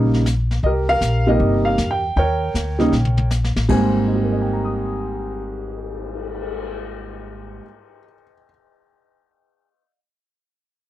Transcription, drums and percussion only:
0.14 snare soft
0.26 snare medium
0.26 hi-hat pedal medium
0.51 snare soft
0.63 brush sweep soft
0.63 kick soft
1.01 snare medium
1.01 hi-hat pedal medium
1.40 brush sweep soft
1.40 kick soft
1.78 snare medium
1.78 hi-hat pedal soft
2.17 brush sweep soft
2.17 kick soft
2.55 snare medium
2.55 hi-hat pedal medium
2.80 snare soft
2.93 snare soft
3.05 high tom soft
3.17 high tom medium
3.31 snare medium
3.31 hi-hat pedal medium
3.44 snare medium
3.56 snare medium
3.69 kick soft
3.69 crash medium
3.95 cymbal swell soft

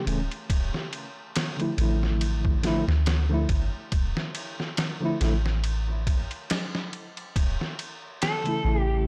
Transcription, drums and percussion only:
0.07 ride medium
0.31 ride soft
0.50 kick loud
0.50 ride medium
0.74 snare soft
0.93 ride medium
1.36 snare loud
1.36 ride medium
1.60 ride soft
1.78 ride medium
2.03 snare soft
2.21 ride medium
2.45 kick medium
2.63 snare soft
2.63 ride medium
2.89 snare soft
3.06 snare loud
3.06 ride medium
3.49 kick medium
3.49 ride medium
3.92 kick loud
3.92 ride medium
4.17 snare medium
4.35 ride medium
4.60 snare soft
4.77 snare loud
4.77 ride medium
5.21 snare soft
5.21 ride medium
5.46 snare soft
5.64 ride medium
6.07 kick medium
6.07 ride medium
6.31 ride soft
6.50 snare loud
6.50 ride medium
6.75 snare medium
6.93 ride medium
7.17 ride soft
7.36 kick loud
7.36 ride medium
7.61 snare soft
7.79 ride medium
8.22 snare loud
8.22 ride medium
8.46 ride soft

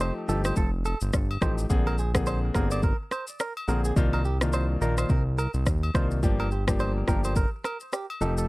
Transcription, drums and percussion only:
0.00 high agogo medium
0.00 low woodblock medium
0.00 shaker medium
0.29 shaker medium
0.44 cross-stick medium
0.44 high agogo medium
0.44 shaker medium
0.56 kick medium
0.56 shaker medium
0.85 high agogo medium
0.85 shaker soft
1.01 shaker medium
1.13 kick loud
1.13 cross-stick medium
1.13 low woodblock medium
1.13 shaker medium
1.31 high agogo medium
1.42 kick loud
1.42 cross-stick loud
1.42 shaker medium
1.58 shaker medium
1.70 kick loud
1.70 shaker medium
1.87 high agogo medium
1.98 shaker medium
2.15 kick medium
2.15 cross-stick loud
2.15 shaker medium
2.26 high agogo medium
2.26 low woodblock medium
2.26 shaker medium
2.54 kick medium
2.54 cross-stick medium
2.54 shaker medium
2.71 high agogo medium
2.71 shaker medium
2.83 kick medium
2.83 shaker medium
3.11 cross-stick medium
3.11 high agogo medium
3.11 shaker soft
3.27 shaker medium
3.40 cross-stick medium
3.40 low woodblock medium
3.40 shaker medium
3.57 high agogo medium
3.68 shaker medium
3.84 shaker medium
3.96 kick loud
3.96 shaker medium
4.13 high agogo medium
4.25 shaker medium
4.41 cross-stick loud
4.41 shaker medium
4.53 high agogo medium
4.53 low woodblock medium
4.53 shaker medium
4.82 shaker medium
4.98 cross-stick medium
4.98 high agogo medium
4.98 shaker medium
5.09 kick medium
5.09 shaker medium
5.38 high agogo medium
5.38 shaker medium
5.54 shaker medium
5.66 kick loud
5.66 cross-stick medium
5.66 low woodblock medium
5.66 shaker medium
5.83 high agogo medium
5.95 kick loud
5.95 cross-stick loud
5.95 shaker medium
6.11 shaker medium
6.23 kick loud
6.23 shaker medium
6.40 high agogo medium
6.51 shaker medium
6.68 kick medium
6.68 cross-stick loud
6.68 shaker medium
6.79 high agogo medium
6.79 low woodblock medium
6.79 shaker medium
7.08 kick medium
7.08 cross-stick medium
7.08 shaker medium
7.24 high agogo medium
7.24 shaker medium
7.36 kick medium
7.36 shaker medium
7.64 cross-stick medium
7.64 high agogo medium
7.64 shaker soft
7.80 shaker medium
7.93 cross-stick medium
7.93 low woodblock medium
7.93 shaker medium
8.10 high agogo medium
8.21 shaker medium
8.38 shaker medium

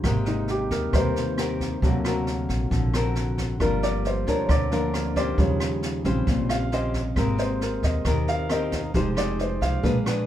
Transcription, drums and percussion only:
0.04 kick medium
0.04 cross-stick medium
0.04 snare soft
0.26 snare soft
0.48 snare soft
0.71 kick soft
0.71 snare soft
0.93 kick medium
0.93 cross-stick medium
0.93 snare soft
1.16 snare soft
1.38 cross-stick medium
1.38 snare soft
1.60 kick soft
1.60 snare soft
1.82 kick medium
1.82 snare soft
2.05 cross-stick medium
2.05 snare soft
2.27 snare soft
2.49 kick soft
2.49 snare soft
2.71 kick medium
2.71 snare soft
2.94 cross-stick medium
2.94 snare soft
3.15 snare soft
3.38 kick soft
3.38 snare soft
3.60 kick medium
3.60 cross-stick medium
3.60 snare soft
3.83 snare soft
4.05 snare soft
4.27 kick soft
4.27 snare soft
4.49 kick medium
4.49 cross-stick medium
4.49 snare soft
4.71 snare soft
4.94 cross-stick medium
4.94 snare soft
5.16 kick soft
5.16 snare soft
5.38 kick medium
5.38 snare soft
5.60 cross-stick medium
5.60 snare soft
5.82 snare soft
6.05 kick soft
6.05 snare soft
6.27 kick medium
6.27 snare soft
6.49 cross-stick medium
6.49 snare soft
6.72 snare soft
6.94 kick soft
6.94 snare soft
7.16 kick medium
7.16 cross-stick medium
7.16 snare soft
7.38 snare soft
7.61 snare soft
7.83 kick soft
7.83 snare soft
8.05 kick medium
8.05 cross-stick medium
8.05 snare soft
8.28 snare soft
8.49 cross-stick medium
8.49 snare soft
8.72 kick soft
8.72 snare soft
8.94 kick medium
8.94 snare soft
9.17 cross-stick medium
9.17 snare soft
9.39 snare soft
9.61 kick soft
9.61 snare soft
9.84 kick medium
9.84 snare soft
10.06 cross-stick medium
10.06 snare soft

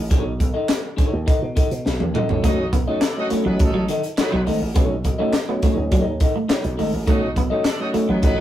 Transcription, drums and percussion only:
0.11 kick loud
0.11 closed hi-hat loud
0.40 kick medium
0.40 closed hi-hat medium
0.69 snare loud
0.69 clap medium
0.69 closed hi-hat loud
0.98 kick medium
0.98 closed hi-hat medium
1.28 kick loud
1.28 closed hi-hat medium
1.57 kick loud
1.57 closed hi-hat medium
1.71 closed hi-hat medium
1.86 snare medium
2.00 high tom medium
2.15 mid tom loud
2.29 floor tom medium
2.44 kick loud
2.44 closed hi-hat loud
2.73 kick medium
2.73 closed hi-hat medium
3.01 snare loud
3.01 clap medium
3.01 closed hi-hat loud
3.30 closed hi-hat medium
3.59 kick loud
3.59 closed hi-hat medium
3.89 closed hi-hat medium
4.03 closed hi-hat medium
4.18 snare loud
4.18 clap loud
4.18 closed hi-hat medium
4.47 open hi-hat medium
4.76 kick loud
4.76 closed hi-hat loud
5.04 kick medium
5.04 closed hi-hat medium
5.33 snare loud
5.33 clap medium
5.33 closed hi-hat medium
5.62 kick medium
5.62 closed hi-hat medium
5.92 kick loud
5.92 closed hi-hat medium
6.20 kick loud
6.20 closed hi-hat medium
6.50 snare loud
6.50 clap loud
6.50 closed hi-hat medium
6.64 closed hi-hat medium
6.79 open hi-hat medium
7.07 kick loud
7.07 closed hi-hat loud
7.36 kick medium
7.36 closed hi-hat medium
7.65 snare loud
7.65 clap medium
7.65 closed hi-hat medium
7.94 closed hi-hat medium
8.23 kick loud
8.23 closed hi-hat medium

